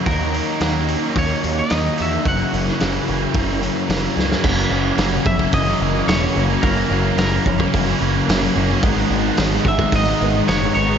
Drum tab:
CC |----------------|----------------|x---------------|----------------|
HH |o-o-o-o-o-o-o-o-|o-o-o-o-o-o-o---|----o---o---o---|o---o---o---o---|
SD |----o-------o---|---oo-------o-oo|----o-------o---|----o-------o---|
BD |o-------o-------|o-------o-------|o-----ooo-------|o-----ooo-------|

CC |----------------|
HH |o---o---o---o---|
SD |----o-------o---|
BD |o-----ooo-------|